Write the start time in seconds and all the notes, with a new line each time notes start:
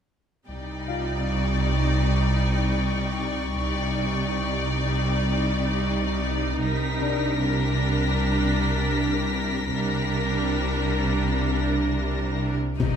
0.48 C2 C3 G3 D#4 D5 G5
0.88 F4 F5
1.27 C#6
3.56 C2 C3 G3 D#4 D5
6.63 C2 C3 G3 A#4 A#6 B6
7.01 D4 D5
7.41 D4
9.71 C2 C3 G3 D4 A#4
12.79 C2 C3 G3 D#4 D5, impact